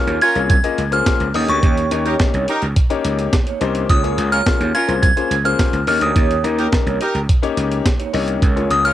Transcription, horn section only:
0, 0, Header, 1, 2, 480
1, 0, Start_track
1, 0, Tempo, 566038
1, 1381, Time_signature, 4, 2, 24, 8
1, 7575, End_track
2, 0, Start_track
2, 0, Title_t, "Horn section"
2, 0, Program_c, 0, 61
2, 183, Note_on_c, 0, 61, 105
2, 184, Note_on_c, 0, 65, 108
2, 184, Note_on_c, 0, 70, 112
2, 335, Note_off_c, 0, 61, 0
2, 336, Note_off_c, 0, 65, 0
2, 336, Note_off_c, 0, 70, 0
2, 1742, Note_on_c, 0, 63, 96
2, 1742, Note_on_c, 0, 70, 93
2, 1744, Note_on_c, 0, 67, 95
2, 1818, Note_off_c, 0, 63, 0
2, 1818, Note_off_c, 0, 70, 0
2, 1819, Note_off_c, 0, 67, 0
2, 2102, Note_on_c, 0, 67, 92
2, 2103, Note_on_c, 0, 70, 117
2, 2104, Note_on_c, 0, 63, 103
2, 2255, Note_off_c, 0, 67, 0
2, 2255, Note_off_c, 0, 70, 0
2, 2256, Note_off_c, 0, 63, 0
2, 3661, Note_on_c, 0, 61, 96
2, 3661, Note_on_c, 0, 65, 83
2, 3661, Note_on_c, 0, 70, 100
2, 3738, Note_off_c, 0, 61, 0
2, 3738, Note_off_c, 0, 65, 0
2, 3738, Note_off_c, 0, 70, 0
2, 4023, Note_on_c, 0, 70, 113
2, 4024, Note_on_c, 0, 61, 102
2, 4024, Note_on_c, 0, 65, 104
2, 4176, Note_off_c, 0, 61, 0
2, 4176, Note_off_c, 0, 65, 0
2, 4176, Note_off_c, 0, 70, 0
2, 5579, Note_on_c, 0, 67, 99
2, 5579, Note_on_c, 0, 70, 101
2, 5580, Note_on_c, 0, 63, 88
2, 5657, Note_off_c, 0, 63, 0
2, 5657, Note_off_c, 0, 67, 0
2, 5657, Note_off_c, 0, 70, 0
2, 5943, Note_on_c, 0, 63, 95
2, 5944, Note_on_c, 0, 67, 98
2, 5944, Note_on_c, 0, 70, 122
2, 6096, Note_off_c, 0, 63, 0
2, 6096, Note_off_c, 0, 67, 0
2, 6096, Note_off_c, 0, 70, 0
2, 7502, Note_on_c, 0, 61, 91
2, 7502, Note_on_c, 0, 65, 90
2, 7502, Note_on_c, 0, 70, 97
2, 7575, Note_off_c, 0, 61, 0
2, 7575, Note_off_c, 0, 65, 0
2, 7575, Note_off_c, 0, 70, 0
2, 7575, End_track
0, 0, End_of_file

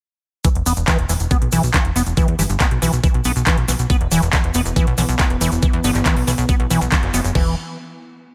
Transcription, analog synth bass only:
0, 0, Header, 1, 2, 480
1, 0, Start_track
1, 0, Key_signature, 1, "minor"
1, 0, Tempo, 431655
1, 496, Time_signature, 4, 2, 24, 8
1, 9282, End_track
2, 0, Start_track
2, 0, Title_t, "Analog synth bass"
2, 0, Program_c, 0, 38
2, 616, Note_on_c, 0, 28, 83
2, 693, Note_off_c, 0, 28, 0
2, 736, Note_on_c, 0, 28, 96
2, 813, Note_off_c, 0, 28, 0
2, 855, Note_on_c, 0, 28, 89
2, 933, Note_off_c, 0, 28, 0
2, 1096, Note_on_c, 0, 28, 86
2, 1173, Note_off_c, 0, 28, 0
2, 1216, Note_on_c, 0, 28, 101
2, 1293, Note_off_c, 0, 28, 0
2, 1336, Note_on_c, 0, 28, 90
2, 1413, Note_off_c, 0, 28, 0
2, 1576, Note_on_c, 0, 35, 87
2, 1653, Note_off_c, 0, 35, 0
2, 1696, Note_on_c, 0, 35, 99
2, 1773, Note_off_c, 0, 35, 0
2, 1816, Note_on_c, 0, 35, 91
2, 1893, Note_off_c, 0, 35, 0
2, 2056, Note_on_c, 0, 28, 83
2, 2133, Note_off_c, 0, 28, 0
2, 2176, Note_on_c, 0, 28, 99
2, 2253, Note_off_c, 0, 28, 0
2, 2296, Note_on_c, 0, 28, 84
2, 2373, Note_off_c, 0, 28, 0
2, 2536, Note_on_c, 0, 40, 84
2, 2613, Note_off_c, 0, 40, 0
2, 2656, Note_on_c, 0, 31, 97
2, 2733, Note_off_c, 0, 31, 0
2, 2776, Note_on_c, 0, 31, 94
2, 2853, Note_off_c, 0, 31, 0
2, 3016, Note_on_c, 0, 35, 87
2, 3093, Note_off_c, 0, 35, 0
2, 3136, Note_on_c, 0, 35, 100
2, 3213, Note_off_c, 0, 35, 0
2, 3256, Note_on_c, 0, 35, 91
2, 3333, Note_off_c, 0, 35, 0
2, 3496, Note_on_c, 0, 35, 85
2, 3573, Note_off_c, 0, 35, 0
2, 3616, Note_on_c, 0, 35, 95
2, 3693, Note_off_c, 0, 35, 0
2, 3736, Note_on_c, 0, 35, 91
2, 3813, Note_off_c, 0, 35, 0
2, 3976, Note_on_c, 0, 35, 86
2, 4053, Note_off_c, 0, 35, 0
2, 4095, Note_on_c, 0, 35, 104
2, 4173, Note_off_c, 0, 35, 0
2, 4215, Note_on_c, 0, 35, 81
2, 4293, Note_off_c, 0, 35, 0
2, 4455, Note_on_c, 0, 28, 83
2, 4533, Note_off_c, 0, 28, 0
2, 4576, Note_on_c, 0, 28, 92
2, 4653, Note_off_c, 0, 28, 0
2, 4695, Note_on_c, 0, 28, 93
2, 4773, Note_off_c, 0, 28, 0
2, 4936, Note_on_c, 0, 28, 86
2, 5013, Note_off_c, 0, 28, 0
2, 5056, Note_on_c, 0, 28, 99
2, 5133, Note_off_c, 0, 28, 0
2, 5176, Note_on_c, 0, 28, 91
2, 5253, Note_off_c, 0, 28, 0
2, 5416, Note_on_c, 0, 35, 92
2, 5493, Note_off_c, 0, 35, 0
2, 5536, Note_on_c, 0, 35, 97
2, 5613, Note_off_c, 0, 35, 0
2, 5656, Note_on_c, 0, 35, 95
2, 5733, Note_off_c, 0, 35, 0
2, 5896, Note_on_c, 0, 28, 90
2, 5973, Note_off_c, 0, 28, 0
2, 6016, Note_on_c, 0, 28, 99
2, 6093, Note_off_c, 0, 28, 0
2, 6136, Note_on_c, 0, 28, 83
2, 6213, Note_off_c, 0, 28, 0
2, 6376, Note_on_c, 0, 40, 85
2, 6453, Note_off_c, 0, 40, 0
2, 6496, Note_on_c, 0, 31, 96
2, 6573, Note_off_c, 0, 31, 0
2, 6616, Note_on_c, 0, 31, 95
2, 6693, Note_off_c, 0, 31, 0
2, 6856, Note_on_c, 0, 35, 85
2, 6933, Note_off_c, 0, 35, 0
2, 6975, Note_on_c, 0, 35, 99
2, 7053, Note_off_c, 0, 35, 0
2, 7096, Note_on_c, 0, 35, 95
2, 7173, Note_off_c, 0, 35, 0
2, 7336, Note_on_c, 0, 35, 86
2, 7413, Note_off_c, 0, 35, 0
2, 7456, Note_on_c, 0, 35, 95
2, 7533, Note_off_c, 0, 35, 0
2, 7576, Note_on_c, 0, 35, 89
2, 7653, Note_off_c, 0, 35, 0
2, 7816, Note_on_c, 0, 30, 89
2, 7893, Note_off_c, 0, 30, 0
2, 7936, Note_on_c, 0, 30, 102
2, 8013, Note_off_c, 0, 30, 0
2, 8056, Note_on_c, 0, 30, 84
2, 8133, Note_off_c, 0, 30, 0
2, 8176, Note_on_c, 0, 28, 101
2, 8399, Note_off_c, 0, 28, 0
2, 9282, End_track
0, 0, End_of_file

